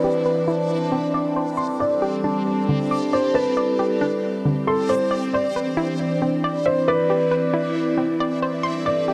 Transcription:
Already playing: E3 C4 D4 E4 B4 D5 E5, downlifter
0.04 G4
0.26 B4
0.48 E4
0.92 C4
1.14 D5
1.36 C5
1.57 G3 G4 A4 C6
1.80 D5
2.02 G4
2.24 D4
2.69 D3
2.91 D6
3.13 C5 D5
3.34 E4 B4 A5
3.57 D5
3.79 G4
4.01 D4
4.45 D3
4.67 A4 C6
4.89 C5 D5
5.11 E3 D4 E4 B4 D5
5.33 C5 D5
5.56 B4
5.77 E4
6.22 C4
6.44 D5
6.66 C5 E5
6.87 E4 B4 D5 E5
7.10 G4
7.31 B4
7.54 E4
7.98 C4
8.20 D5
8.42 C5
8.63 G3 C4 D4 G4 A4 D5 C6
8.86 D5
9.08 G4

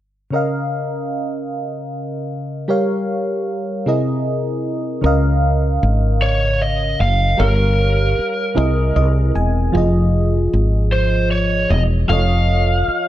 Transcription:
0.31 C#3 C#4 A#4 D#5
0.36 F5
2.68 G3 G4 A#4 C#5 F5
3.86 C3 C4 E4 G#4 A#4 D#5
5.01 C#2 C#3 C#4 A#4
5.06 D#5 F5
5.83 G#1
6.22 C#5
6.62 D#5
7.00 F#1 F5
7.37 G1 G3 G4 A#4 C#5 F5
8.19 muted fretless electric bass stroke
8.55 C2 C3 C4 E4 G#4 A#4 D#5
8.96 C2 D#5
9.35 E1 G#5
9.72 F1 F3 F4 G#4
9.77 D#5
10.53 G#1
10.92 C5
11.31 C#5
11.70 E1 D#5
12.08 F1 F3 F4 A4 C#5 F5
12.13 D#5
12.88 muted fretless electric bass stroke

